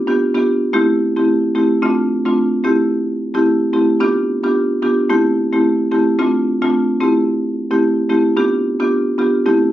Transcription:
0.07 0.22 B3 medium
0.07 0.22 D4 medium
0.07 0.22 F4 medium
0.07 0.23 G4 medium
0.34 0.49 B3 medium
0.34 0.50 D4 medium
0.34 0.50 F4 medium
0.34 0.50 G4 medium
0.73 1.13 A3 loud
0.73 1.13 C4 medium
0.73 1.13 E4 medium
0.73 1.13 G4 loud
1.16 1.52 A3 medium
1.16 1.52 C4 medium
1.16 1.53 E4 medium
1.16 1.53 G4 medium
1.55 1.81 A3 medium
1.55 1.81 C4 medium
1.55 1.81 E4 medium
1.55 1.81 G4 medium
1.82 2.01 A3 loud
1.82 2.01 C4 medium
1.82 2.01 D4 medium
1.82 2.01 F4 loud
2.25 2.62 A3 medium
2.25 2.62 C4 medium
2.25 2.62 D4 medium
2.25 2.62 F4 medium
2.64 2.90 A3 medium
2.64 2.90 C4 medium
2.64 2.90 E4 medium
2.64 2.90 G4 medium
3.34 3.71 A3 medium
3.34 3.71 C4 medium
3.34 3.71 E4 medium
3.34 3.71 G4 medium
3.73 3.99 A3 medium
3.73 3.99 C4 medium
3.73 3.99 E4 medium
3.73 3.99 G4 medium
4.00 4.19 B3 medium
4.00 4.19 D4 medium
4.00 4.19 F4 medium
4.00 4.19 G4 loud
4.43 4.80 B3 medium
4.43 4.80 D4 medium
4.43 4.80 F4 medium
4.43 4.80 G4 medium
4.82 5.08 B3 medium
4.82 5.08 D4 medium
4.82 5.08 F4 medium
4.82 5.08 G4 medium
5.09 5.49 A3 medium
5.09 5.49 C4 medium
5.09 5.49 E4 medium
5.09 5.49 G4 loud
5.53 5.89 A3 medium
5.53 5.89 C4 medium
5.53 5.89 E4 medium
5.53 5.89 G4 medium
5.91 6.17 A3 medium
5.91 6.17 C4 medium
5.91 6.17 E4 medium
5.91 6.17 G4 medium
6.19 6.37 A3 medium
6.19 6.37 C4 medium
6.19 6.37 D4 medium
6.19 6.37 F4 loud
6.62 6.98 A3 medium
6.62 6.98 C4 medium
6.62 6.98 D4 medium
6.62 6.98 F4 medium
7.00 7.26 A3 medium
7.00 7.26 C4 medium
7.00 7.26 E4 medium
7.00 7.26 G4 medium
7.71 8.07 A3 medium
7.71 8.07 C4 medium
7.71 8.07 E4 medium
7.71 8.07 G4 medium
8.09 8.35 A3 medium
8.09 8.35 C4 medium
8.09 8.35 E4 medium
8.09 8.35 G4 medium
8.37 8.55 B3 loud
8.37 8.55 D4 medium
8.37 8.55 F4 medium
8.37 8.55 G4 loud
8.80 9.16 B3 medium
8.80 9.16 D4 medium
8.80 9.16 F4 medium
8.80 9.16 G4 medium
9.18 9.44 B3 medium
9.18 9.44 D4 medium
9.18 9.44 F4 medium
9.18 9.44 G4 medium
9.46 9.72 A3 medium
9.46 9.72 C4 medium
9.46 9.72 E4 medium
9.46 9.72 G4 medium

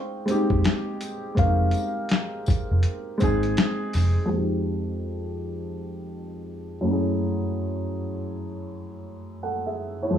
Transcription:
0.00 0.26 G#3 medium
0.00 0.28 C4 medium
0.00 0.29 D#4 medium
0.00 1.42 C5 medium
0.00 4.32 G5 medium
0.26 1.10 G#3 medium
0.26 1.11 C4 medium
0.26 1.12 D#4 medium
0.26 closed hi-hat medium
0.26 tambourine soft
0.31 1.13 G4 medium
0.50 0.63 F1 medium
0.50 kick medium
0.64 snare loud
0.64 closed hi-hat medium
1.01 closed hi-hat medium
1.01 tambourine medium
1.35 1.72 F1 loud
1.35 2.45 G#3 medium
1.35 2.46 C4 medium
1.35 2.46 D#4 medium
1.35 kick loud
1.35 closed hi-hat medium
1.39 2.48 A#4 medium
1.39 3.54 F5 medium
1.71 closed hi-hat medium
1.71 tambourine medium
2.09 snare loud
2.09 closed hi-hat medium
2.46 kick medium
2.46 closed hi-hat medium
2.46 tambourine medium
2.71 2.84 F1 medium
2.83 closed hi-hat medium
3.18 4.02 G#3 medium
3.18 4.03 C4 medium
3.18 4.04 D#4 medium
3.18 closed hi-hat medium
3.18 tambourine soft
3.22 3.56 G#1 medium
3.22 4.05 G#4 loud
3.22 kick medium
3.43 closed hi-hat soft
3.57 snare loud
3.57 closed hi-hat medium
3.93 4.16 F1 medium
3.93 snare soft
3.93 open hi-hat medium
3.93 tambourine medium
4.26 6.80 F2 medium
4.26 6.81 G#3 medium
4.31 6.83 C4 medium
4.31 6.84 D#4 medium
4.37 6.85 G4 medium
6.81 9.72 F#2 medium
6.81 9.74 A3 medium
6.86 9.75 C#4 medium
6.86 9.40 E4 medium
6.92 9.41 G#4 medium
9.43 9.65 A4 soft
9.43 9.65 F#5 medium
9.66 10.01 G#4 soft
9.66 10.01 E5 medium
10.03 10.18 E4 medium
10.03 10.18 C#5 medium
10.10 10.18 F2 medium
10.10 10.18 G#3 medium

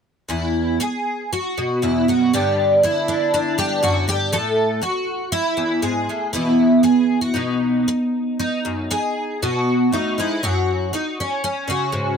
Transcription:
0.29 0.79 E2 medium
0.29 0.81 E4 medium
0.80 1.32 G#4 medium
0.80 muted twelve-string acoustic guitar stroke medium
1.33 1.83 F#4 medium
1.58 2.30 B2 medium
1.82 2.08 E2 medium
1.82 2.08 E4 medium
2.08 2.33 F#2 soft
2.08 2.34 F#4 medium
2.33 2.82 G2 medium
2.33 4.33 D3 soft
2.33 4.31 B3 soft
2.33 3.07 D4 soft
2.33 2.84 G4 medium
2.83 3.58 E4 medium
2.83 muted twelve-string acoustic guitar stroke medium
3.08 3.33 D4 medium
3.34 4.08 D4 medium
3.58 3.82 G2 medium
3.58 3.83 G4 medium
3.83 4.07 F#2 medium
3.83 4.08 F#4 medium
4.08 4.33 G2 soft
4.08 4.33 G4 medium
4.32 4.81 A2 medium
4.32 4.82 A4 medium
4.82 5.32 F#4 medium
4.82 muted twelve-string acoustic guitar stroke medium
5.32 5.82 E4 medium
5.57 5.82 E2 medium
5.82 6.08 G#2 medium
5.82 6.33 G#4 medium
6.09 6.34 A2 soft
6.33 6.84 B2 medium
6.33 7.33 E3 soft
6.33 9.86 B3 soft
6.33 6.83 E4 medium
6.83 7.21 G#4 medium
6.83 muted twelve-string acoustic guitar stroke medium
7.21 7.35 F#4 medium
7.34 7.86 B2 medium
7.34 8.38 D#4 medium
7.88 muted twelve-string acoustic guitar stroke medium
8.39 9.42 D#4 medium
8.65 8.89 F#2 medium
8.91 9.42 G#4 medium
8.91 muted twelve-string acoustic guitar stroke medium
9.42 9.92 B2 medium
9.42 10.18 F#4 medium
9.92 10.18 A2 medium
9.92 10.44 D#4 medium
10.18 10.43 G#2 soft
10.18 10.43 E4 medium
10.43 10.92 F#2 medium
10.43 11.43 F#4 medium
10.93 11.19 D#4 medium
10.93 muted twelve-string acoustic guitar stroke medium
11.20 11.43 C#4 medium
11.44 12.17 C#4 medium
11.68 12.17 C#3 medium
11.68 12.17 F#4 medium
11.92 12.17 G#2 medium

